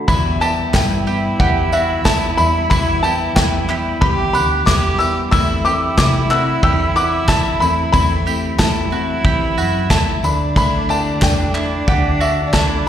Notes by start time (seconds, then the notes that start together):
0.08 E2 B2 E3 G3 B3 E4 B5, kick, tambourine
0.40 E3 G3 B3 E4 G4 A5, tambourine
0.73 G2 E3 G3 B3 E4 G5, kick, snare, clap, tambourine
1.07 E3 G3 B3 E4 G4, tambourine
1.40 E2 G4 F#5, kick
1.72 F#4 E5, tambourine
2.04 E2 E3 G3 B3 E4 A5, kick, snare, clap, tambourine
2.38 E2 E3 G3 B3 E4 B5, tambourine
2.70 E2 B2 E3 G3 B3 E4 B5, kick, tambourine
3.03 E3 G3 B3 E4 G4 A5, tambourine
3.36 E2 E3 G3 B3 E4 G5, kick, snare, clap, tambourine
3.68 E3 G3 B3 E4 G4, clap, tambourine
4.01 E3 G4 B5, kick
4.33 D2 F#5 B5, tambourine
4.65 E2 E3 G3 B3 E4 G4 D6, kick, snare, clap, tambourine
4.99 E3 G3 B3 E4 E6, tambourine
5.31 E2 E3 A3 C4 E4 E6, kick, tambourine
5.65 A3 C4 G4 D6, tambourine
5.98 C3 E3 A3 C4 E4 D6, kick, snare, clap, tambourine
6.30 A3 C4 E4 F#4 E6, clap, tambourine
6.63 E2 G4 E6, kick
6.96 F#4 D6, tambourine
7.28 E2 E3 A3 C4 E4 A5, kick, snare, clap, tambourine
7.60 E2 A3 C4 E4 B5, tambourine
7.92 E2 E3 A3 C4 E4 B5, kick, tambourine
8.26 A3 C4 E4 G4, tambourine
8.58 E2 E3 A3 C4 E4 A5, kick, snare, clap, tambourine
8.91 A3 C4 E4 F#4, tambourine
9.24 E3 G4, kick
9.58 F#2 F#4, tambourine
9.90 E2 E3 A3 C4 E4 A5, kick, snare, clap, tambourine
10.23 D2 A3 D4 E4 B5, tambourine
10.56 D3 A3 D4 E4 B5, kick, tambourine
10.89 A3 D4 E4 G4 A5, tambourine
11.22 E2 D3 A3 D4 E4 G5, kick, snare, clap, tambourine
11.54 A3 D4 E4, clap, tambourine
11.88 D2 G4 F#5, kick
12.20 F#4 E5, tambourine
12.53 D2 D3 A3 D4 E4 A5, kick, snare, clap, tambourine